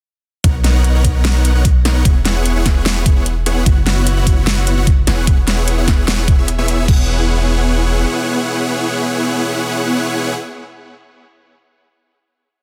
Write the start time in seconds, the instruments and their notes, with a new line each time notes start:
0.44 808-style bass B1, supersaw synth B3 D#4 A#4 C#5 F#5, kick, closed hi-hat
0.64 supersaw synth B3 D#4 A#4 C#5 F#5, snare, closed hi-hat
0.84 closed hi-hat
0.95 supersaw synth B3 D#4 A#4 C#5 F#5
1.05 kick, closed hi-hat
1.25 supersaw synth B3 D#4 A#4 C#5 F#5, snare, closed hi-hat
1.45 closed hi-hat
1.55 supersaw synth B3 D#4 A#4 C#5 F#5
1.65 kick, closed hi-hat
1.85 supersaw synth B3 D#4 A#4 C#5 F#5, snare, closed hi-hat
2.05 808-style bass E1, supersaw synth B3 E4 G#4 C#5 F#5, kick, closed hi-hat
2.25 supersaw synth B3 E4 G#4 C#5 F#5, snare, closed hi-hat
2.46 closed hi-hat
2.56 supersaw synth B3 E4 G#4 C#5 F#5
2.66 kick, snare, closed hi-hat
2.86 supersaw synth B3 E4 G#4 C#5 F#5, snare, closed hi-hat
3.06 kick, closed hi-hat
3.16 supersaw synth B3 E4 G#4 C#5 F#5
3.26 closed hi-hat
3.46 supersaw synth B3 E4 G#4 C#5 F#5, closed hi-hat
3.66 808-style bass F#1, supersaw synth B3 E4 F#4 F#5, kick, closed hi-hat
3.86 supersaw synth B3 E4 F#4 C#5 F#5, snare, closed hi-hat
4.07 closed hi-hat
4.17 supersaw synth B3 E4 F#4 C#5 F#5
4.27 kick, closed hi-hat
4.47 supersaw synth B3 E4 F#4 C#5 F#5, snare, closed hi-hat
4.67 closed hi-hat
4.77 supersaw synth B3 E4 F#4 C#5 F#5
4.87 kick, closed hi-hat
5.07 808-style bass E1, supersaw synth B3 E4 G#4 C#5 F#5, snare, closed hi-hat
5.27 supersaw synth B3 E4 G#4 C#5 F#5, kick, closed hi-hat
5.47 supersaw synth B3 E4 G#4 C#5 F#5, snare, closed hi-hat
5.68 closed hi-hat
5.78 supersaw synth B3 E4 G#4 C#5 F#5
5.88 kick, snare, closed hi-hat
6.08 supersaw synth B3 E4 G#4 C#5 F#5, snare, closed hi-hat
6.28 kick, closed hi-hat
6.38 supersaw synth B3 E4 G#4 C#5 E5
6.48 closed hi-hat
6.58 supersaw synth B3 E4 G#4 C#5 E5
6.68 closed hi-hat
6.88 808-style bass E1, supersaw synth B3 E4 G#4 C#5 F#5, kick, crash